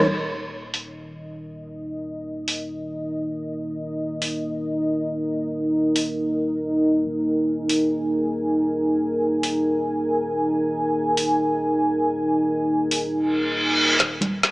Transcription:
0.08 D#1 D#4 A#4 D#5
0.74 open hi-hat
2.48 open hi-hat
4.22 open hi-hat
5.96 open hi-hat
7.04 D#1 G#5
7.69 open hi-hat
9.43 open hi-hat
11.17 open hi-hat
12.91 open hi-hat
13.13 reverse cymbal
13.99 D#1 D#4 A#4 D#5, kick, snare, closed hi-hat, riser
14.21 closed hi-hat, high conga
14.43 kick, snare, closed hi-hat

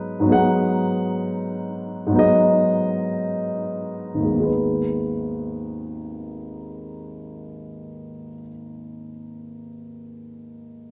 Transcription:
Already playing: G#2 F#3 B3 D#4 G#4 B4
0.20 G#2 F#3
0.26 B3 D#4
0.31 G#4 F#5
2.07 G#2 F#3
2.12 B3 D#4
2.18 G#4 D#5
4.14 G#1
4.20 D#2
4.24 G#3
4.30 B3
4.34 D#4
4.40 G#4 B4

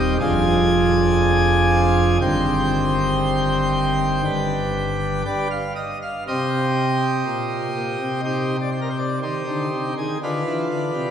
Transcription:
Already playing: D#1 D#2 G3 C4 G4 D#5
0.20 F1 F2 F3 D4 G#4 G#5
2.21 G1 G2 D#3 C4 C5 G5
4.25 G1 G2 D3 D4 B4
5.25 G4 B4 D5
5.51 F5
5.76 D#5
6.02 F5
6.28 C3 G4 C5 D#5
7.26 A#2
7.76 A#2
8.01 C3
8.25 D#4 G4 C5
8.62 D5
8.72 C5
8.82 A#4
8.90 C5
8.99 D5
9.23 D#3 D#4 G4 C5
9.47 D3
9.74 C3
9.98 D#3 G#4
10.23 D3 D4 F4 B4
10.47 E3
10.71 D3
10.94 C3

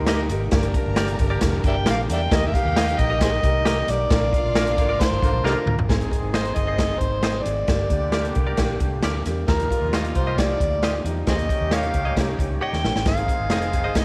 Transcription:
Already playing: D2 G3 A#3 D#4 C5 C6
0.07 D#4 G4 A#4 D#5, snare, closed hi-hat
0.29 G#1 D#4 G4 A#4, closed hi-hat
0.51 G1 D3 D4 G4 A#4 A#5, kick, snare, closed hi-hat
0.63 closed hi-hat
0.74 D4 G4 A#4, kick, closed hi-hat
0.86 G1
0.96 D4 G4 A#4 D5, snare, closed hi-hat
1.08 closed hi-hat
1.19 G1 D4 G4 A#4, kick, closed hi-hat
1.30 G4 A#4 D5
1.41 F1 D4 G4 A#4, kick, snare, closed hi-hat
1.64 G1 D4 G4 A#4 D5 E5 G5, kick, closed hi-hat
1.78 G3 G4
1.86 A#1 G#3 D4 G4 G#4 A#4 D5, snare, closed hi-hat
1.91 F5
1.95 A#3 A#4
2.02 C4 C5
2.09 E2 D4 G4 A#4 D5 E5 G5, closed hi-hat
2.17 D#4 D#5
2.26 F4 F5
2.31 D#2 D#3 G3 D#4 G4 A#4 D#5 G5, kick, snare, closed hi-hat
2.47 E5
2.54 D#4 G4 A#4 F5, kick, closed hi-hat
2.65 D#2
2.76 D#4 G4 A#4 D#5, snare, closed hi-hat
2.88 closed hi-hat
2.99 A#1 D#4 G4 A#4 D#5, kick, closed hi-hat
3.10 G4 A#4 D#5
3.21 D#4 G4 G#4 A#4 C5 D#5, kick, snare, closed hi-hat
3.43 C2 D#4 G4 A#4, kick, closed hi-hat
3.65 D#4 G4 A#4 D#5, snare, closed hi-hat
3.88 B1 D#4 G4 A#4 D5, snare, closed hi-hat
4.09 A#1 D3 F3 A#3 D4 F4 A#4 F5, kick, snare, closed hi-hat
4.33 D4 F4 A#4, kick, closed hi-hat
4.44 A#1
4.55 D4 F4 A#4 D5, snare, closed hi-hat
4.67 closed hi-hat
4.77 G#1 D3 A#3 D4 F4 A#4, kick, closed hi-hat
4.89 F4 A#4 D5
5.00 D4 F4 A#4 C5, kick, snare, closed hi-hat
5.11 G1
5.22 G#1 D3 A#3 D4 F4 A#4, kick, closed hi-hat
5.33 A#1
5.44 C2 D3 A#3 D4 D#4 F4 G4 A#4 D5, snare
5.66 D2 D4 F4 A#4, mid tom
5.78 A#1, floor tom
5.88 G#1 D#3 G#3 C4 D#4 G#4, kick, snare, closed hi-hat
6.01 closed hi-hat
6.11 C4 D#4 G#4, kick, closed hi-hat
6.22 G#1
6.34 G#4 C5 D#5, snare, closed hi-hat
6.45 closed hi-hat
6.55 G1 C4 D#4 G#4 D#5, kick, closed hi-hat
6.67 G#4 C5 D#5
6.77 C4 D#4 G#4, kick, snare, closed hi-hat
6.98 G#1 C4 D#4 G#4 C5, kick, closed hi-hat
7.22 C4 D#4 G#4 C5 D#5, snare, closed hi-hat
7.43 G#1 C4 D#4 G#4 D5, closed hi-hat
7.68 G1 D3 G3 A#3 D4 G4, kick, snare, closed hi-hat
7.90 D2 A#3 D4 G4, kick, closed hi-hat
8.12 A#3 D4 G4 A#4 D5, snare, closed hi-hat
8.25 closed hi-hat
8.35 C2 A#3 D4 G4, kick, closed hi-hat
8.47 G4 A#4 D5
8.57 A#1 A#3 D4 G4, kick, snare, closed hi-hat
8.80 C2 A#3 D4 G4, kick, closed hi-hat
9.03 D2 A#3 D4 G4 A#4 D5, snare, closed hi-hat
9.26 E2 A#3 D4 G4, snare, closed hi-hat
9.47 D#2 A#2 F3 G3 D#4 F4 G4 A#4, kick, snare, closed hi-hat
9.60 closed hi-hat
9.70 D#4 F4 G4, kick, closed hi-hat
9.82 D#2
9.93 D#4 F4 G4 D#5, snare, closed hi-hat
10.05 closed hi-hat
10.15 C2 D#4 F4 G4 C5, kick, closed hi-hat
10.27 F4 G4 D#5
10.38 D#4 F4 G4 D5, kick, snare, closed hi-hat
10.60 D2 D#4 F4 G4, kick, closed hi-hat
10.82 D#4 F4 G4 D#5, snare, closed hi-hat
11.04 E2 D#4 F4 G4, closed hi-hat
11.27 D#2 D#3 C#4 D#4 G4 G#4 C5 D#5, kick, snare, closed hi-hat
11.39 closed hi-hat
11.49 C#4 D#4 G4, kick, closed hi-hat
11.61 D#2
11.71 C#4 D#4 G4 C#5 D#5 F5, snare, closed hi-hat
11.83 closed hi-hat
11.94 C#2 C#4 D#4 G4, kick, closed hi-hat
12.05 G4 C#5 D#5
12.16 C2 C#4 D#4 G4, kick, snare, closed hi-hat
12.39 C#2 C#4 D#4 G4, kick, closed hi-hat
12.61 C#4 D#4 G4 C#5 D#5 G5
12.73 D#2, snare
12.84 A#1 C#4 D#4 G4, snare
12.96 A1, snare
13.05 G#1 D#3 G#3 C4 D#4 G#4 F5, kick, snare, closed hi-hat
13.17 closed hi-hat
13.28 C4 D#4 G#4, kick, closed hi-hat
13.40 G#1
13.50 F1 C4 D#4 G#4 C5 D#5, snare, closed hi-hat
13.62 closed hi-hat
13.73 C4 D#4 G#4, kick, closed hi-hat
13.84 G1 G#4 C5 D#5
13.95 C4 D#4 G#4 D#5, kick, snare, closed hi-hat

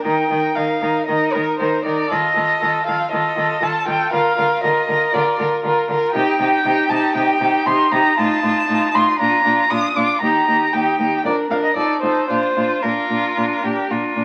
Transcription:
0.04 D#3 D#4 A#4 G5
0.30 D#3 D#4 A#4
0.56 D#3 D#4 A#4 F5
0.81 D#3 D#4 A#4
1.07 D#3 D#4 A#4 D#5
1.33 D#3 D#4 A#4
1.59 D#3 D#4 A#4 C5
1.84 D#3 D#4 A#4 D5
2.10 D#3 F4 A4 D#5
2.35 D#3 F4 A4
2.61 D#3 F4 A4
2.86 D#3 F4 A4 F5
3.11 D#3 F4 A4 D#5
3.37 D#3 F4 A4
3.62 D#3 F4 A4 A5
3.87 D#3 F4 A4 G5
4.12 D3 F4 A#4 F5
4.37 D3 F4 A#4
4.63 D3 F4 A#4 D#5
4.87 D3 F4 A#4
5.13 D3 F4 A#4 D5
5.39 D3 F4 A#4
5.64 D3 F4 A#4
5.89 D3 F4 A#4
6.14 C3 D#4 G4 G5
6.40 C3 D#4 G4
6.65 C3 D#4 G4
6.90 C3 D#4 G4 A5
7.15 C3 D#4 G4 G5
7.41 C3 D#4 G4
7.66 C3 D#4 G4 C6
7.92 C3 D#4 G4 A#5
8.17 A2 D#4 F4 A5
8.42 A2 D#4 F4
8.68 A2 D#4 F4
8.93 A2 D#4 F4 C6
9.19 A#2 D4 F4 A#5
9.44 A#2 D4 F4
9.70 A#2 D4 F4 D#6
9.95 A#2 D4 F4 D6
10.22 D#2 D#4 G4 A#5
10.47 D#2 D#4 G4
10.73 D#2 D#4 G4 G5
10.98 D#2 D#4 G4
11.25 F2 D4 A#4 D5
11.50 F2 D4 A#4 F5
11.64 D#5
11.76 F2 D#4 A4 D5
12.01 F2 D#4 A4 C5
12.28 A#2 D4 F4 C5
12.56 A#2 D4 F4
12.83 A#2 D4 F4 A#4
13.10 A#2 D4
13.37 A#2 D4
13.63 A#2 D4 G4
13.90 A#2 D4 F4
14.16 A#2 D4

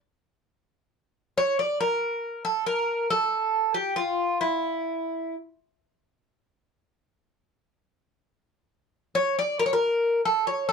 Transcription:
1.38 C#5
1.59 D5
1.81 A#4
2.45 A4
2.66 A#4
3.10 A4
3.74 G4
3.96 F4
4.41 E4
9.15 C#5
9.39 D5
9.59 A#4
9.66 C#5
9.73 A#4
10.25 A4
10.47 C#5
10.69 A4

